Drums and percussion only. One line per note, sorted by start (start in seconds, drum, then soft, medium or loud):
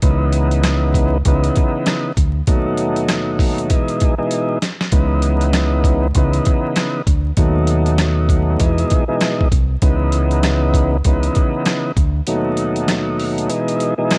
0.02 kick loud
0.02 closed hi-hat medium
0.33 closed hi-hat medium
0.51 closed hi-hat medium
0.63 cross-stick medium
0.63 snare loud
0.63 closed hi-hat loud
0.94 kick medium
0.94 closed hi-hat medium
1.25 kick medium
1.25 closed hi-hat medium
1.44 closed hi-hat medium
1.56 kick loud
1.56 closed hi-hat medium
1.86 cross-stick medium
1.86 snare loud
1.86 closed hi-hat medium
2.17 kick medium
2.17 closed hi-hat medium
2.47 kick loud
2.47 closed hi-hat medium
2.77 closed hi-hat medium
2.96 closed hi-hat medium
3.08 cross-stick medium
3.08 snare loud
3.08 closed hi-hat loud
3.39 kick medium
3.39 open hi-hat medium
3.58 closed hi-hat medium
3.70 kick medium
3.70 closed hi-hat medium
3.88 closed hi-hat medium
4.00 kick loud
4.00 closed hi-hat medium
4.31 closed hi-hat medium
4.62 snare medium
4.62 closed hi-hat medium
4.81 snare medium
4.92 kick loud
4.92 closed hi-hat medium
5.22 closed hi-hat medium
5.41 closed hi-hat medium
5.53 cross-stick medium
5.53 snare loud
5.53 closed hi-hat loud
5.84 kick medium
5.84 closed hi-hat medium
6.15 kick medium
6.15 closed hi-hat medium
6.33 closed hi-hat medium
6.45 kick loud
6.45 closed hi-hat medium
6.76 cross-stick medium
6.76 snare loud
6.76 closed hi-hat loud
7.07 kick medium
7.07 closed hi-hat medium
7.37 kick loud
7.37 closed hi-hat medium
7.67 closed hi-hat medium
7.86 closed hi-hat medium
7.98 cross-stick medium
7.98 snare loud
7.98 closed hi-hat loud
8.29 kick medium
8.29 closed hi-hat medium
8.60 kick medium
8.60 closed hi-hat loud
8.78 closed hi-hat medium
8.90 kick loud
8.90 closed hi-hat medium
9.21 cross-stick medium
9.21 snare loud
9.21 closed hi-hat loud
9.41 kick medium
9.52 kick medium
9.52 closed hi-hat medium
9.82 kick loud
9.82 closed hi-hat medium
10.12 closed hi-hat medium
10.31 closed hi-hat medium
10.43 cross-stick medium
10.43 snare loud
10.43 closed hi-hat loud
10.74 kick medium
10.74 closed hi-hat medium
11.05 kick medium
11.05 closed hi-hat medium
11.23 closed hi-hat medium
11.35 kick loud
11.35 closed hi-hat medium
11.65 cross-stick medium
11.65 snare loud
11.65 closed hi-hat medium
11.97 kick medium
11.97 closed hi-hat medium
12.27 closed hi-hat medium
12.57 closed hi-hat medium
12.76 closed hi-hat medium
12.88 cross-stick medium
12.88 snare loud
12.88 closed hi-hat loud
13.20 open hi-hat medium
13.38 closed hi-hat medium
13.50 closed hi-hat medium
13.68 closed hi-hat medium
13.80 closed hi-hat medium
14.11 cross-stick medium
14.11 snare loud
14.11 closed hi-hat medium